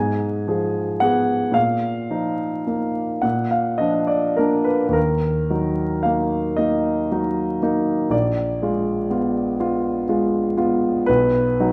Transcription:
Already playing: G#2 G#5
0.47 F3 G#4
1.00 B3 G#4 F#5
1.52 A#2 F5
2.10 F3 D#4
2.67 A#3 D#4
3.22 A#2 F#5
3.51 F5
3.78 F3 D4 D#5
4.07 D5
4.36 A#3 D4 A#4
4.64 B4
4.86 D#2 B4
4.93 A#4
5.50 F#3 D#4
6.03 A#3 D#4 F5
6.57 A#3 D#4 D#5
7.12 F#3 D#4
7.62 A#3 D#4
8.09 A#1 D5
8.62 G#3 F4
9.10 B3 F4
9.60 B3 F4
10.09 G#3 F4
10.57 B3 F4
11.06 B1 B4
11.60 F#3 D#4

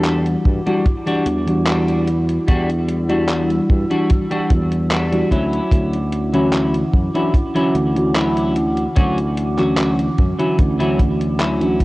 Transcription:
Already playing: E2 E3 G3 D4 E4 F#4 A4 F#5 D6
0.04 clap, closed hi-hat
0.26 closed hi-hat
0.45 G2, kick
0.66 E3 G3 D4 F#4, closed hi-hat
0.86 kick, closed hi-hat
1.06 E3 G3 D4 F#4, closed hi-hat
1.26 E2, closed hi-hat
1.46 E3 G3 D4 F#4, muted clean electric guitar stroke, closed hi-hat
1.67 G3 D4 F#4, clap, closed hi-hat
1.88 closed hi-hat
2.07 closed hi-hat
2.29 closed hi-hat
2.47 E2 G3 D4 F#4 E6, kick, closed hi-hat
2.69 closed hi-hat
2.88 muted clean electric guitar stroke, closed hi-hat
3.09 E3 G3 D4 F#4, closed hi-hat
3.29 clap, closed hi-hat
3.50 closed hi-hat
3.70 G2, kick
3.90 E3 G3 D4 F#4, closed hi-hat
4.10 kick, closed hi-hat
4.31 E3 G3 D4 F#4, closed hi-hat
4.50 E2, kick, closed hi-hat
4.71 muted clean electric guitar stroke, closed hi-hat
4.91 G3 D4 F#4, clap, closed hi-hat
5.12 E3 G3 D4 F#4, closed hi-hat
5.31 D2 F#3 C#4 E4 F#5 D6, kick, closed hi-hat
5.53 closed hi-hat
5.71 D2, kick, closed hi-hat
5.93 closed hi-hat
6.12 muted clean electric guitar stroke, closed hi-hat
6.34 D3 E3 F#3 C#4 E4 F#4, closed hi-hat
6.53 clap, closed hi-hat
6.75 closed hi-hat
6.94 F#2, kick
7.14 E3 F#3 C#4 D4 E4 F#4, closed hi-hat
7.34 kick, closed hi-hat
7.55 D3 E3 F#3 C#4 E4 F#4, closed hi-hat
7.75 D2, closed hi-hat
7.95 D3 E3 C#4 F#4, muted clean electric guitar stroke, closed hi-hat
8.15 F#3 C#4 E4, clap, closed hi-hat
8.37 closed hi-hat
8.56 closed hi-hat
8.77 closed hi-hat
8.96 D2 F#3 C#4 F#4, kick, closed hi-hat
9.18 closed hi-hat
9.37 muted clean electric guitar stroke, closed hi-hat
9.58 D3 E3 F#3 C#4 F#4, clap, closed hi-hat
9.78 clap, closed hi-hat
9.99 closed hi-hat
10.18 F#2, kick, closed hi-hat
10.39 D3 E3 F#3 C#4 E4 F#4, closed hi-hat
10.59 D2, kick, closed hi-hat
10.79 D3 E3 F#3 C#4 E4 F#4, closed hi-hat
10.99 kick, closed hi-hat
11.20 muted clean electric guitar stroke, closed hi-hat
11.39 F#3 C#4 E4, clap, closed hi-hat
11.60 E3 C#4 D4 F#4, closed hi-hat
11.80 kick, closed hi-hat

